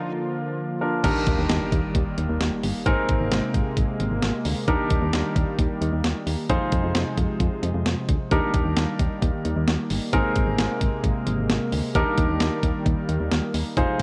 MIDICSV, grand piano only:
0, 0, Header, 1, 2, 480
1, 0, Start_track
1, 0, Key_signature, -3, "major"
1, 0, Tempo, 454545
1, 1100, Time_signature, 4, 2, 24, 8
1, 14809, End_track
2, 0, Start_track
2, 0, Title_t, "Grand piano"
2, 0, Program_c, 0, 0
2, 0, Note_on_c, 0, 62, 73
2, 0, Note_on_c, 0, 65, 67
2, 0, Note_on_c, 0, 70, 81
2, 827, Note_off_c, 0, 62, 0
2, 827, Note_off_c, 0, 65, 0
2, 827, Note_off_c, 0, 70, 0
2, 861, Note_on_c, 0, 65, 53
2, 861, Note_on_c, 0, 70, 64
2, 862, Note_on_c, 0, 62, 59
2, 1083, Note_off_c, 0, 62, 0
2, 1083, Note_off_c, 0, 70, 0
2, 1099, Note_on_c, 0, 62, 75
2, 1099, Note_on_c, 0, 70, 82
2, 1100, Note_on_c, 0, 63, 70
2, 1100, Note_on_c, 0, 67, 69
2, 1101, Note_off_c, 0, 65, 0
2, 2981, Note_off_c, 0, 62, 0
2, 2981, Note_off_c, 0, 70, 0
2, 2982, Note_off_c, 0, 63, 0
2, 2982, Note_off_c, 0, 67, 0
2, 3017, Note_on_c, 0, 60, 76
2, 3017, Note_on_c, 0, 63, 70
2, 3017, Note_on_c, 0, 68, 71
2, 3017, Note_on_c, 0, 70, 85
2, 4900, Note_off_c, 0, 60, 0
2, 4900, Note_off_c, 0, 63, 0
2, 4900, Note_off_c, 0, 68, 0
2, 4900, Note_off_c, 0, 70, 0
2, 4940, Note_on_c, 0, 62, 79
2, 4940, Note_on_c, 0, 70, 82
2, 4941, Note_on_c, 0, 63, 71
2, 4941, Note_on_c, 0, 67, 68
2, 6822, Note_off_c, 0, 62, 0
2, 6822, Note_off_c, 0, 63, 0
2, 6822, Note_off_c, 0, 67, 0
2, 6822, Note_off_c, 0, 70, 0
2, 6860, Note_on_c, 0, 63, 76
2, 6860, Note_on_c, 0, 65, 70
2, 6860, Note_on_c, 0, 68, 72
2, 6860, Note_on_c, 0, 72, 86
2, 8742, Note_off_c, 0, 63, 0
2, 8742, Note_off_c, 0, 65, 0
2, 8742, Note_off_c, 0, 68, 0
2, 8742, Note_off_c, 0, 72, 0
2, 8779, Note_on_c, 0, 67, 67
2, 8780, Note_on_c, 0, 62, 77
2, 8780, Note_on_c, 0, 63, 69
2, 8780, Note_on_c, 0, 70, 85
2, 10661, Note_off_c, 0, 67, 0
2, 10662, Note_off_c, 0, 62, 0
2, 10662, Note_off_c, 0, 63, 0
2, 10662, Note_off_c, 0, 70, 0
2, 10699, Note_on_c, 0, 60, 74
2, 10699, Note_on_c, 0, 63, 69
2, 10699, Note_on_c, 0, 68, 72
2, 10699, Note_on_c, 0, 70, 88
2, 12581, Note_off_c, 0, 60, 0
2, 12581, Note_off_c, 0, 63, 0
2, 12581, Note_off_c, 0, 68, 0
2, 12581, Note_off_c, 0, 70, 0
2, 12621, Note_on_c, 0, 63, 71
2, 12621, Note_on_c, 0, 67, 71
2, 12621, Note_on_c, 0, 70, 88
2, 12622, Note_on_c, 0, 62, 77
2, 14502, Note_off_c, 0, 63, 0
2, 14502, Note_off_c, 0, 67, 0
2, 14502, Note_off_c, 0, 70, 0
2, 14503, Note_off_c, 0, 62, 0
2, 14541, Note_on_c, 0, 63, 78
2, 14541, Note_on_c, 0, 65, 69
2, 14541, Note_on_c, 0, 68, 72
2, 14541, Note_on_c, 0, 72, 84
2, 14809, Note_off_c, 0, 63, 0
2, 14809, Note_off_c, 0, 65, 0
2, 14809, Note_off_c, 0, 68, 0
2, 14809, Note_off_c, 0, 72, 0
2, 14809, End_track
0, 0, End_of_file